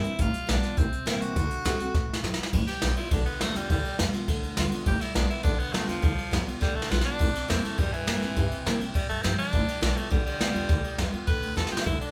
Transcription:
Already playing: G2 E4
0.03 C4 E4, muted upright bass stroke, closed hi-hat
0.19 G1 G3 F4, kick, closed hi-hat
0.34 muted upright bass stroke, closed hi-hat
0.47 B1 G3 B3 D4 F4, snare, closed hi-hat
0.63 B3 F4, snare, closed hi-hat
0.77 C2 C3 C4, kick, closed hi-hat
0.91 muted upright bass stroke, closed hi-hat
1.06 G2 E3 A#3 C4 E4, snare, closed hi-hat
1.21 C#2 F#4, closed hi-hat
1.36 D2 D3, kick, closed hi-hat
1.51 muted upright bass stroke, closed hi-hat
1.65 C3 D3 A3 C4 F#4, kick, snare, closed hi-hat
1.79 C4 F#4, muted upright bass stroke, closed hi-hat
1.94 A2, kick, snare
2.08 A2
2.13 snare
2.23 A2 F#3, snare
2.34 snare
2.39 muted upright bass stroke
2.43 snare
2.53 G1 G3, kick, crash
2.67 G4, muted upright bass stroke, snare, ride
2.82 B1 G3 B3 F4, snare, ride
2.96 B3 E4 F4, ride
3.11 B1 D3 D4, kick, snare, ride
3.26 B3, muted upright bass stroke, ride
3.41 D2 G3 A3 B3 F4, snare, ride
3.55 E2 G3 B3 F4, snare, ride
3.70 D2 G3, kick, ride
3.84 muted upright bass stroke, ride
3.99 F2 G3 B3 F4, snare, ride
4.13 B3 F4, muted upright bass stroke, snare, ride
4.28 D2 D3, kick, snare, ride
4.42 D2, ride
4.57 D2 G3 B3 F4, snare, ride
4.71 B3 F4, muted upright bass stroke, ride
4.86 G1 G3 G4, kick, ride
5.00 E4, muted upright bass stroke, snare, ride
5.14 B1 G3 B3 D4 F4, snare, ride
5.30 E4, muted upright bass stroke, ride
5.43 B1 D3 D4, kick, ride
5.59 B3, muted upright bass stroke, ride
5.73 D2 G3 A3 B3 F4, snare, ride
5.87 E2 F3 B3 F4, snare, ride
6.02 D2 G3, kick, ride
6.18 muted upright bass stroke, ride
6.31 F2 G3 B3 F4, kick, snare, ride
6.46 B3 F4, muted upright bass stroke, ride
6.61 D2 D3 G3, kick, snare
6.75 D2 A3
6.82 snare
6.90 B1 G3 B3 F4, snare
7.01 D4 F4, snare
7.06 B3
7.19 C2 C3, kick, ride
7.35 snare, ride
7.48 E2 E3 A#3 C4 E4, snare, ride
7.63 A3 C4 E4, muted upright bass stroke, snare, ride
7.78 E2 G2 G3, kick, snare, ride
7.93 E3, muted upright bass stroke, ride
8.07 G2 E3 A#3 C4 E4, snare, ride
8.22 A2 C4 E4, snare, ride
8.37 G2 C3, kick, ride
8.51 muted upright bass stroke, ride
8.66 A#2 E3 A#3 C4 E4, snare, ride
8.80 C4 E4, muted upright bass stroke, ride
8.94 G2 E3 G3, kick, ride
9.09 G2 A3, ride
9.23 G2 F3 C4, snare, ride
9.38 D4, ride
9.53 G1 G3, kick, ride
9.68 muted upright bass stroke, snare, ride
9.81 B1 G3 B3 D4 F4, snare, ride
9.95 A3 B3 F4, muted upright bass stroke, ride
10.10 B1 D3 G3, kick, ride
10.25 G3, ride
10.39 D2 G3 B3 F4, snare, ride
10.53 E2 B3 F4, ride
10.69 D2 G3, kick, ride
10.84 muted upright bass stroke, ride
10.98 F2 G3 B3 F4, kick, snare, ride
11.12 B3 F4, muted upright bass stroke, ride
11.27 D2 D3 B4, kick, ride
11.42 D2, ride
11.56 E2 G3 B3 F4 A4, snare
11.67 F4, snare
11.71 B3 G4, muted upright bass stroke
11.77 snare
11.84 D2 D3 E4, kick, ride
12.00 D4, muted upright bass stroke, ride

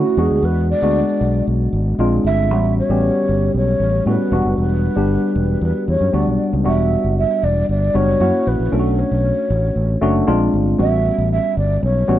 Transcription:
Already playing: A3 C#4 E4 F#4
0.17 E2 G#3 B3 D4 F#4 G#4
0.30 D2
0.43 E2 B4
0.70 D5
0.82 D2 G#3 B3 D4 F#4
1.21 B1
1.47 B1
1.73 G#1
1.99 A#1 G#3 C4 D4 F4
2.24 G1 E5
2.51 A1 G3 B3 C#4 F#4
2.79 C#5
2.89 A1 G3 B3 C#4 G4
3.29 G1
3.54 B1 C#5
3.80 A1
4.06 A2 G3 B3 C#4 F#4 B4
4.32 E1 G3 B3 D4 F#4
4.45 F#1
4.58 E1 B4
4.96 G1 G3 B3 D4 G4
5.36 E1
5.61 E2 B4
5.88 E2 C#5
6.01 F#2
6.13 D2 G3 B3 D4 F#4 D5
6.27 B1
6.53 C#2
6.64 E1 G3 B3 D4 F#4 E5
7.04 F#1
7.18 E5
7.43 E1 D5
7.69 G1 D5
7.94 F#1 G3 B3 D4 F#4 C#5
8.20 F#2 A#3 C#4 E4 F#4
8.47 A#1 B4
8.60 A#1
8.72 B1 A3 C#4 D4 F4 A4
8.79 F#4
8.99 C#5
9.11 B1
9.50 A1
9.76 A1
10.01 F#1 A3 C#4 D4 F#4
10.27 A#1 G#3 C4 D4 F4
10.54 G1
10.79 A1 G3 B3 C#4 F#4 E5
11.18 A1
11.32 E5
11.57 G1 D5
11.83 B1 C#5
12.08 A1 G3 B3 C#4 F#4

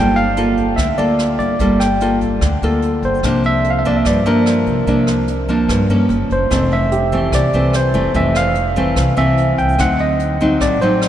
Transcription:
Already playing: G1 G3 A#3 F4 A4 G5
0.16 F5, closed hi-hat
0.37 A#3 F4 A4, closed hi-hat
0.57 kick, closed hi-hat
0.76 D2 D3 E5, kick, cross-stick, closed hi-hat
0.98 D2 A#3 F4 A4 D5, closed hi-hat
1.19 cross-stick, closed hi-hat
1.39 G1 D5, kick, closed hi-hat
1.59 G1 G3 A#3 F4 A4, kick, closed hi-hat
1.80 G5, cross-stick, closed hi-hat
2.00 A#3 F4 A4, closed hi-hat
2.21 kick, closed hi-hat
2.41 D2 D3, kick, cross-stick, closed hi-hat
2.62 D2 A#3 F4 A4, closed hi-hat
2.82 closed hi-hat
3.02 G1 C5, kick, closed hi-hat
3.23 C2 C3 F3 A#3 D4, kick, cross-stick, closed hi-hat
3.44 E5, closed hi-hat
3.64 closed hi-hat
3.70 F5
3.79 E5
3.85 F3 A#3 D4 D5, kick, closed hi-hat
3.96 E5
4.05 G2 D5, kick, cross-stick, closed hi-hat
4.26 G2 F3 A#3 D4 A#4, closed hi-hat
4.46 cross-stick, closed hi-hat
4.66 C2, kick, closed hi-hat
4.87 C2 C3 F3 A#3 D4, kick, closed hi-hat
5.07 cross-stick, closed hi-hat
5.28 closed hi-hat
5.48 F3 A#3 D4, kick, closed hi-hat
5.69 G2, kick, cross-stick, closed hi-hat
5.89 G2 F3 A#3 C#4, closed hi-hat
6.09 F#1, closed hi-hat
6.30 F#1 C5, kick, closed hi-hat
6.50 F1 F2 E3 A3 C4, kick, cross-stick, closed hi-hat
6.71 E5, closed hi-hat
6.92 G4, closed hi-hat
7.12 E3 A3 C4, kick, closed hi-hat
7.32 C2 C3 D5, kick, cross-stick, closed hi-hat
7.53 C2 E3 A3 C4, closed hi-hat
7.73 C5, cross-stick, closed hi-hat
7.94 F1 E3 A3 C4, kick, closed hi-hat
8.14 F1 F2 E3 A3 C4 E5, kick, closed hi-hat
8.35 F5, cross-stick, closed hi-hat
8.55 closed hi-hat
8.76 E3 A3 C4, kick, closed hi-hat
8.96 C2 C3, kick, cross-stick, closed hi-hat
9.17 C2 E3 A3 C4 E5, closed hi-hat
9.38 closed hi-hat
9.58 C2 G5, kick, closed hi-hat
9.79 D2 D3 F#3 C4 D#4 F#5, kick, cross-stick, closed hi-hat
9.99 D#5, closed hi-hat
10.19 closed hi-hat
10.40 F#3 C4 D#4, kick, closed hi-hat
10.60 A1 A2 D5, kick, cross-stick, closed hi-hat
10.81 A1 F#3 C4 D#4 C5, closed hi-hat
11.02 cross-stick, closed hi-hat

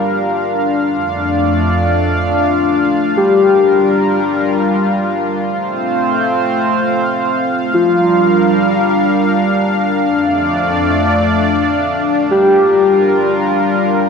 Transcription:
Already playing: G3 D4 F4 A#4 F5
0.88 F2 A3 D5
3.17 G3 G4 A#4
5.45 A3 C4 C5 F5
7.74 G3 D4 F4 A#4
10.03 F2 A3 D5
12.31 G3 F4 G4 A#4

